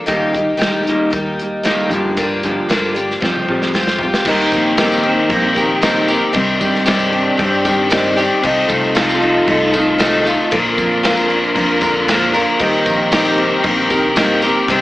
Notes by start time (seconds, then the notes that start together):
0.06 D#2 D#3 G3 A#3 D#4 G4, kick, closed hi-hat
0.33 D#3 A#3 D#4 G4, kick, closed hi-hat
0.37 G3
0.57 A#1 D#3 G3 A#3 D#4 G4, closed hi-hat
0.62 D#3 G3, snare
0.83 A#3 D#4 G4, closed hi-hat
0.89 D#3 G3 A#3
1.10 D#2 G3 A#3 D#4 G4, kick, closed hi-hat
1.15 D#3 G3
1.39 D#3 G3, closed hi-hat
1.63 D#3 G3 A#3 D#4 G4, snare, closed hi-hat
1.89 G2 D3 F3 A#3 D4 G4, closed hi-hat
1.94 F3
2.17 G2 D3 F3 A#3 D4 G4, kick, closed hi-hat
2.43 G2 D3 F3 A#3 D4 G4, kick, closed hi-hat
2.68 G2 D3 F3 A#3 D4 G4, snare, closed hi-hat
2.94 G2 D3 F3 A#3 D4 G4, closed hi-hat
3.11 snare
3.20 F2 F3 G3 C4 F4 G4, kick, snare
3.36 high tom
3.48 F3 G3 C4, mid tom
3.62 snare
3.73 F3 G3 C4 F4 G4, snare
3.87 snare
3.99 F3 G3 G4, floor tom
4.03 C4 F4
4.14 snare
4.25 D#2 D#3 G3 A#3 C4 D#4 G4 A#4, kick, crash, tambourine
4.40 tambourine
4.52 A#1 A#3, kick, tambourine, crash
4.67 tambourine
4.77 D#3 G3 C4 G4 A#4, snare, tambourine, crash
4.92 tambourine
5.03 C4, crash
5.29 A#1 G3 A#3 C4 G4, kick, crash
5.33 A#4
5.55 D#3 C4 G4 A#4, kick, tambourine, crash
5.82 D#3 G3 A#3 C4 G4 A#4, snare, tambourine, crash
5.95 tambourine
6.08 C4 G4 A#4, tambourine, crash
6.21 tambourine
6.33 C2 C3 D#3 G3 C4 D4 G4, kick, tambourine, crash
6.48 tambourine
6.60 G2 G3, kick, tambourine, crash
6.72 snare, tambourine
6.86 C3 D#3 G3 C4 D4 G4, snare, tambourine, crash
6.99 tambourine
7.12 D4, crash
7.37 G2 G3 C4 D4 G4, kick, crash
7.64 D#3 G3 C4 D4 G4, kick, tambourine, crash
7.90 C3 D#3 G3 C4 D4 G4, snare, tambourine, crash
8.04 tambourine
8.16 G3 C4 D4 G4, tambourine, crash
8.30 tambourine
8.42 C2 C3 F3 C4 D#4 F4 A4, kick, tambourine, crash
8.56 tambourine
8.68 C2 A3, kick, tambourine, crash
8.83 tambourine
8.95 C3 F3 D#4 F4 A4, snare, tambourine, crash
9.09 tambourine
9.21 D#4, crash
9.46 C2 F3 A3 D#4 F4 A4, kick, crash
9.73 D#3 D#4 F4 A4, kick, tambourine, crash
9.98 C3 F3 A3 D#4 F4 A4, snare, tambourine, crash
10.13 tambourine
10.24 D#4 F4 A4, tambourine, crash
10.40 tambourine
10.51 A#1 A#2 D3 F3 A#3 D4 F4 A#4, kick, crash
10.66 tambourine
10.78 F2 A#3, kick, tambourine, crash
10.92 tambourine
11.03 A#2 D3 F3 A#3 D4 F4 A#4, snare, tambourine, crash
11.17 tambourine
11.29 D4, tambourine, crash
11.43 tambourine
11.55 F2 F3 A#3 D4 A#4, kick, crash
11.81 D3 F3 A#3 D4 A#4, kick, tambourine, crash
11.97 tambourine
12.06 A#2 D3 F3 A#3 A#4, snare, tambourine, crash
12.10 A#3 D4
12.22 tambourine
12.33 F3 A#3 D4 F4 A#4, tambourine, crash
12.48 tambourine
12.58 D#2 D#3 G3 C4 D#4 G4 A#4, kick, tambourine, crash
12.73 tambourine
12.85 A#1 A#3, kick, tambourine, crash
12.99 tambourine
13.12 D#3 G3 C4 G4 A#4, snare, tambourine, crash
13.25 tambourine
13.38 C4, crash
13.63 A#1 G3 A#3 C4 G4 A#4, kick, crash
13.90 D#3 C4 G4 A#4, kick, tambourine, crash
14.16 D#3 G3 A#3 C4 G4 A#4, snare, tambourine, crash
14.31 tambourine
14.42 C4 G4 A#4, tambourine, crash
14.67 C2 C3 D#3 G3 C4 D4 G4 C5, kick, tambourine, crash